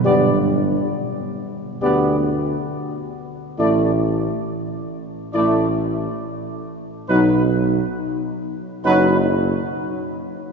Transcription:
0, 0, Header, 1, 5, 480
1, 0, Start_track
1, 0, Tempo, 884956
1, 27, Time_signature, 4, 2, 24, 8
1, 1947, Tempo, 874636
1, 5753, End_track
2, 0, Start_track
2, 0, Title_t, "Trumpet section"
2, 0, Program_c, 0, 61
2, 24, Note_on_c, 0, 74, 62
2, 206, Note_off_c, 0, 74, 0
2, 984, Note_on_c, 0, 74, 59
2, 1167, Note_off_c, 0, 74, 0
2, 1947, Note_on_c, 0, 74, 60
2, 2127, Note_off_c, 0, 74, 0
2, 2902, Note_on_c, 0, 74, 62
2, 3085, Note_off_c, 0, 74, 0
2, 3865, Note_on_c, 0, 71, 68
2, 4047, Note_off_c, 0, 71, 0
2, 4831, Note_on_c, 0, 71, 75
2, 5009, Note_off_c, 0, 71, 0
2, 5753, End_track
3, 0, Start_track
3, 0, Title_t, "French horn section"
3, 0, Program_c, 1, 60
3, 25, Note_on_c, 1, 67, 60
3, 207, Note_off_c, 1, 67, 0
3, 987, Note_on_c, 1, 67, 58
3, 1168, Note_off_c, 1, 67, 0
3, 1942, Note_on_c, 1, 64, 56
3, 2124, Note_off_c, 1, 64, 0
3, 2906, Note_on_c, 1, 64, 65
3, 3087, Note_off_c, 1, 64, 0
3, 3873, Note_on_c, 1, 63, 65
3, 4051, Note_off_c, 1, 63, 0
3, 4831, Note_on_c, 1, 63, 66
3, 5009, Note_off_c, 1, 63, 0
3, 5753, End_track
4, 0, Start_track
4, 0, Title_t, "Trombone section"
4, 0, Program_c, 2, 61
4, 29, Note_on_c, 2, 59, 55
4, 209, Note_off_c, 2, 59, 0
4, 989, Note_on_c, 2, 59, 72
4, 1169, Note_off_c, 2, 59, 0
4, 1946, Note_on_c, 2, 57, 59
4, 2126, Note_off_c, 2, 57, 0
4, 2912, Note_on_c, 2, 57, 71
4, 3090, Note_off_c, 2, 57, 0
4, 3870, Note_on_c, 2, 54, 61
4, 4050, Note_off_c, 2, 54, 0
4, 4833, Note_on_c, 2, 54, 84
4, 5010, Note_off_c, 2, 54, 0
4, 5753, End_track
5, 0, Start_track
5, 0, Title_t, "Tuba"
5, 0, Program_c, 3, 58
5, 28, Note_on_c, 3, 31, 73
5, 428, Note_off_c, 3, 31, 0
5, 987, Note_on_c, 3, 38, 69
5, 1389, Note_off_c, 3, 38, 0
5, 1946, Note_on_c, 3, 33, 76
5, 2347, Note_off_c, 3, 33, 0
5, 2908, Note_on_c, 3, 33, 61
5, 3308, Note_off_c, 3, 33, 0
5, 3871, Note_on_c, 3, 35, 88
5, 4271, Note_off_c, 3, 35, 0
5, 4831, Note_on_c, 3, 30, 82
5, 5227, Note_off_c, 3, 30, 0
5, 5753, End_track
0, 0, End_of_file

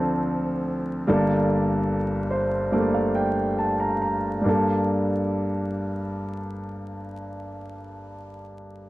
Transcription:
0, 0, Header, 1, 2, 480
1, 0, Start_track
1, 0, Key_signature, -2, "minor"
1, 0, Tempo, 811908
1, 640, Time_signature, 4, 2, 24, 8
1, 1612, Tempo, 862069
1, 5046, End_track
2, 0, Start_track
2, 0, Title_t, "Grand piano"
2, 0, Program_c, 0, 0
2, 0, Control_c, 0, 64, 127
2, 0, Note_on_c, 0, 38, 60
2, 0, Note_on_c, 0, 50, 59
2, 0, Note_on_c, 0, 53, 56
2, 0, Note_on_c, 0, 60, 53
2, 0, Note_on_c, 0, 62, 52
2, 0, Note_on_c, 0, 69, 63
2, 588, Note_off_c, 0, 53, 0
2, 590, Note_off_c, 0, 60, 0
2, 592, Note_off_c, 0, 62, 0
2, 594, Note_off_c, 0, 69, 0
2, 616, Note_off_c, 0, 50, 0
2, 617, Note_off_c, 0, 38, 0
2, 633, Note_on_c, 0, 55, 62
2, 637, Note_on_c, 0, 58, 59
2, 639, Note_on_c, 0, 43, 56
2, 640, Note_on_c, 0, 31, 57
2, 641, Note_on_c, 0, 62, 57
2, 646, Control_c, 0, 64, 0
2, 646, Note_on_c, 0, 69, 69
2, 746, Control_c, 0, 64, 127
2, 1363, Note_on_c, 0, 72, 46
2, 1558, Note_off_c, 0, 55, 0
2, 1560, Note_off_c, 0, 58, 0
2, 1562, Note_off_c, 0, 62, 0
2, 1565, Note_off_c, 0, 69, 0
2, 1594, Note_off_c, 0, 72, 0
2, 1606, Note_on_c, 0, 55, 55
2, 1610, Note_on_c, 0, 58, 49
2, 1613, Note_on_c, 0, 74, 44
2, 1614, Note_on_c, 0, 62, 48
2, 1617, Note_on_c, 0, 57, 58
2, 1722, Note_off_c, 0, 74, 0
2, 1731, Note_on_c, 0, 77, 40
2, 1841, Note_off_c, 0, 77, 0
2, 1848, Note_on_c, 0, 79, 47
2, 2072, Note_off_c, 0, 79, 0
2, 2090, Note_on_c, 0, 81, 41
2, 2202, Note_off_c, 0, 81, 0
2, 2209, Note_on_c, 0, 82, 42
2, 2322, Note_off_c, 0, 82, 0
2, 2331, Note_on_c, 0, 82, 39
2, 2521, Note_off_c, 0, 55, 0
2, 2523, Note_off_c, 0, 58, 0
2, 2525, Note_off_c, 0, 62, 0
2, 2526, Note_off_c, 0, 57, 0
2, 2549, Note_on_c, 0, 55, 48
2, 2550, Note_off_c, 0, 31, 0
2, 2550, Note_off_c, 0, 43, 0
2, 2556, Note_off_c, 0, 82, 0
2, 2564, Note_on_c, 0, 58, 47
2, 2571, Note_on_c, 0, 43, 49
2, 2578, Note_on_c, 0, 62, 50
2, 2580, Control_c, 0, 64, 0
2, 2591, Note_on_c, 0, 69, 53
2, 2686, Control_c, 0, 64, 127
2, 4364, Note_off_c, 0, 55, 0
2, 4379, Note_off_c, 0, 58, 0
2, 4386, Note_off_c, 0, 43, 0
2, 4392, Note_off_c, 0, 62, 0
2, 4406, Note_off_c, 0, 69, 0
2, 5046, End_track
0, 0, End_of_file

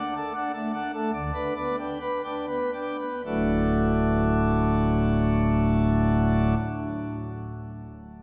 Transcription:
0, 0, Header, 1, 2, 480
1, 0, Start_track
1, 0, Key_signature, 2, "major"
1, 0, Tempo, 588235
1, 929, Time_signature, 3, 2, 24, 8
1, 929, Tempo, 647249
1, 1409, Tempo, 701754
1, 1889, Tempo, 791557
1, 5369, End_track
2, 0, Start_track
2, 0, Title_t, "Pipe organ"
2, 0, Program_c, 0, 19
2, 0, Note_on_c, 0, 62, 84
2, 0, Note_on_c, 0, 78, 115
2, 111, Note_off_c, 0, 62, 0
2, 113, Note_off_c, 0, 78, 0
2, 130, Note_on_c, 0, 69, 86
2, 267, Note_off_c, 0, 69, 0
2, 281, Note_on_c, 0, 78, 96
2, 283, Note_on_c, 0, 62, 87
2, 422, Note_off_c, 0, 78, 0
2, 423, Note_off_c, 0, 62, 0
2, 440, Note_on_c, 0, 57, 92
2, 440, Note_on_c, 0, 69, 98
2, 583, Note_off_c, 0, 57, 0
2, 583, Note_off_c, 0, 69, 0
2, 597, Note_on_c, 0, 62, 81
2, 600, Note_on_c, 0, 78, 88
2, 744, Note_off_c, 0, 62, 0
2, 746, Note_off_c, 0, 78, 0
2, 763, Note_on_c, 0, 69, 80
2, 764, Note_on_c, 0, 57, 76
2, 905, Note_off_c, 0, 69, 0
2, 906, Note_off_c, 0, 57, 0
2, 923, Note_on_c, 0, 38, 108
2, 925, Note_on_c, 0, 50, 101
2, 926, Note_on_c, 0, 74, 89
2, 1058, Note_off_c, 0, 38, 0
2, 1060, Note_off_c, 0, 50, 0
2, 1067, Note_off_c, 0, 74, 0
2, 1080, Note_on_c, 0, 62, 79
2, 1080, Note_on_c, 0, 71, 85
2, 1225, Note_off_c, 0, 62, 0
2, 1225, Note_off_c, 0, 71, 0
2, 1238, Note_on_c, 0, 74, 80
2, 1240, Note_on_c, 0, 59, 76
2, 1388, Note_off_c, 0, 74, 0
2, 1389, Note_off_c, 0, 59, 0
2, 1403, Note_on_c, 0, 62, 77
2, 1404, Note_on_c, 0, 79, 109
2, 1545, Note_off_c, 0, 62, 0
2, 1546, Note_off_c, 0, 79, 0
2, 1560, Note_on_c, 0, 71, 80
2, 1705, Note_off_c, 0, 71, 0
2, 1721, Note_on_c, 0, 62, 75
2, 1721, Note_on_c, 0, 79, 79
2, 1870, Note_off_c, 0, 62, 0
2, 1870, Note_off_c, 0, 79, 0
2, 1881, Note_on_c, 0, 71, 76
2, 1883, Note_on_c, 0, 59, 70
2, 2020, Note_off_c, 0, 71, 0
2, 2021, Note_off_c, 0, 59, 0
2, 2038, Note_on_c, 0, 62, 63
2, 2039, Note_on_c, 0, 79, 72
2, 2180, Note_off_c, 0, 62, 0
2, 2180, Note_off_c, 0, 79, 0
2, 2194, Note_on_c, 0, 59, 59
2, 2195, Note_on_c, 0, 71, 60
2, 2332, Note_off_c, 0, 59, 0
2, 2332, Note_off_c, 0, 71, 0
2, 2355, Note_on_c, 0, 38, 79
2, 2356, Note_on_c, 0, 26, 77
2, 2356, Note_on_c, 0, 54, 65
2, 2356, Note_on_c, 0, 57, 66
2, 2357, Note_on_c, 0, 45, 67
2, 2357, Note_on_c, 0, 66, 69
2, 2358, Note_on_c, 0, 62, 62
2, 4348, Note_off_c, 0, 26, 0
2, 4348, Note_off_c, 0, 38, 0
2, 4349, Note_off_c, 0, 45, 0
2, 4349, Note_off_c, 0, 54, 0
2, 4349, Note_off_c, 0, 57, 0
2, 4349, Note_off_c, 0, 66, 0
2, 4351, Note_off_c, 0, 62, 0
2, 5369, End_track
0, 0, End_of_file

